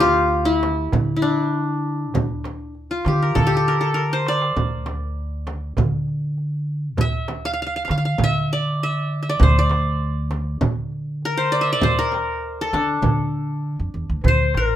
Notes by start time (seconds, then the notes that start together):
Already playing: D2 D4 G4
0.00 F4, darbuka tek, frame drum
0.45 E4
0.63 darbuka tek, frame drum
0.92 D3, darbuka dum, frame drum
1.16 E4
1.22 D4
1.54 darbuka ka
2.14 D2, darbuka dum, frame drum
2.44 darbuka tek, frame drum
2.60 darbuka ka
2.75 darbuka ka
2.90 F4, darbuka ka
3.05 D3 G4, darbuka tek, frame drum
3.22 A#4
3.35 D3 A4, darbuka dum, frame drum
3.47 G4
3.51 darbuka ka
3.57 A4
3.66 A#4, darbuka ka
3.81 A4
3.94 A#4, darbuka tek
4.11 C5, darbuka ka
4.26 D5, darbuka tek
4.42 darbuka ka
4.57 D2, frame drum, darbuka dum
4.86 darbuka tek, frame drum
5.47 darbuka tek, frame drum
5.77 D3, darbuka dum, frame drum
6.08 darbuka ka
6.38 darbuka ka
6.97 D2 E5, darbuka dum, frame drum
7.28 darbuka tek, frame drum
7.45 F5
7.53 F5
7.62 F5
7.67 F5
7.76 F5
7.85 F5, frame drum
7.89 D3 F5, darbuka tek
7.98 F5
8.05 F5
8.18 D3, frame drum, darbuka dum
8.24 E5
8.50 D5, darbuka ka
8.80 E5, darbuka ka
9.23 E5
9.29 D5
9.39 D2 C5, frame drum, darbuka dum
9.59 D5
9.70 darbuka tek, frame drum
10.31 darbuka tek, frame drum
10.61 D3, frame drum, darbuka dum
10.92 darbuka ka
11.22 A#4, darbuka ka
11.37 C5
11.52 D5
11.61 E5
11.73 D5
11.81 D2 C5, frame drum, darbuka dum
11.99 A#4
12.12 darbuka tek, frame drum
12.44 darbuka ka
12.58 A4, darbuka ka
12.73 D3 D4, darbuka tek, frame drum
12.89 darbuka ka
13.02 D3, frame drum, darbuka dum
13.35 darbuka ka
13.80 F2, darbuka ka
13.94 E2, darbuka ka
14.10 D2
14.24 D2 C5, darbuka dum, frame drum
14.28 C5
14.54 A1 A#4, darbuka tek